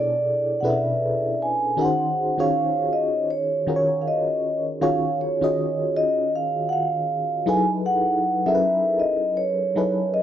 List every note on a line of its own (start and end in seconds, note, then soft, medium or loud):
0.00 0.62 B2 medium
0.00 0.70 D4 medium
0.00 0.64 E4 medium
0.00 0.64 G#4 medium
0.00 0.65 A4 medium
0.00 1.79 C#5 medium
0.00 0.61 D5 medium
0.00 1.37 D5 medium
0.60 1.72 B2 medium
0.60 0.71 C#4 medium
0.60 1.72 E4 medium
0.60 1.72 G#4 medium
0.60 0.64 F#5 medium
0.65 1.73 A4 medium
0.65 1.73 B4 medium
0.65 1.42 E5 medium
0.70 1.75 D4 medium
1.42 1.80 G#5 medium
1.77 2.34 D#3 medium
1.77 2.34 C#4 medium
1.77 2.34 D#4 medium
1.77 2.34 F#4 medium
1.77 2.35 G#4 medium
1.77 1.86 A#4 medium
1.81 2.38 C5 medium
1.81 2.36 F#5 medium
2.38 3.61 D#3 medium
2.38 3.61 C#4 medium
2.38 3.61 F4 medium
2.38 3.61 F#4 medium
2.38 3.62 G#4 medium
2.38 3.62 C#5 medium
2.38 2.94 F5 medium
2.93 3.27 D#5 medium
3.31 4.02 C#5 medium
3.67 4.76 D#3 medium
3.67 4.76 C#4 medium
3.67 4.76 F4 medium
3.67 4.76 F#4 medium
3.67 4.77 G#4 medium
3.67 3.76 A#4 medium
3.76 4.80 C#5 medium
4.02 4.06 F5 medium
4.08 4.63 D#5 medium
4.81 5.38 D#3 medium
4.81 5.38 C#4 medium
4.81 5.38 F4 medium
4.81 5.39 F#4 medium
4.81 5.39 G#4 medium
4.81 5.39 C#5 medium
4.81 5.17 F5 medium
5.21 5.92 C#5 medium
5.41 6.83 D#3 medium
5.41 6.83 C#4 medium
5.41 6.83 F4 medium
5.41 6.84 F#4 medium
5.41 6.84 G#4 medium
5.41 6.84 D#5 medium
5.96 6.31 D#5 loud
6.36 6.68 F5 medium
6.69 7.50 F5 medium
6.69 6.73 F#5 medium
7.46 8.39 F#3 medium
7.46 8.39 D#4 medium
7.46 8.39 E4 medium
7.46 8.39 G#4 medium
7.46 8.40 A4 medium
7.46 8.40 B4 medium
7.46 7.65 G#5 medium
7.86 8.48 F#5 loud
8.46 9.69 F#3 medium
8.46 9.69 C#4 medium
8.46 9.69 E4 medium
8.46 9.70 G#4 medium
8.46 9.70 A4 medium
8.46 8.52 A#4 medium
8.46 9.00 E5 medium
8.55 9.73 B4 medium
9.00 9.38 D#5 medium
9.37 10.09 C#5 medium
9.76 10.23 F#3 medium
9.76 10.23 D#4 medium
9.76 10.23 E4 medium
9.76 10.23 G#4 medium
9.76 10.23 A4 medium
9.76 10.23 B4 medium
10.14 10.23 D#5 medium